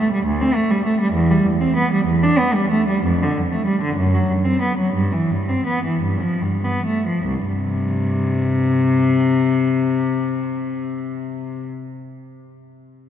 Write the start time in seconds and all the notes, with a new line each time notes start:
0.00 A3
0.12 G3
0.26 D2
0.41 C4
0.55 A3
0.71 G3
0.85 A3
1.00 G3
1.13 E2
1.31 G3
1.45 E2
1.61 C4
1.76 B3
1.92 G3
2.06 E2
2.23 D4
2.38 B3
2.54 G3
2.71 A3
2.88 G3
3.04 F2
3.23 D3
3.37 F2
3.52 A3
3.66 G3
3.82 D3
3.96 F#2
4.14 F#3
4.30 F#2
4.45 C4
4.62 B3
4.78 F#3
4.94 G2
5.12 E3
5.31 G2
5.49 C4
5.67 B3
5.85 E3
6.02 G2
6.21 F3
6.42 G2
6.65 B3
6.86 A3
7.07 F3
7.26 C2
7.48 G2 C3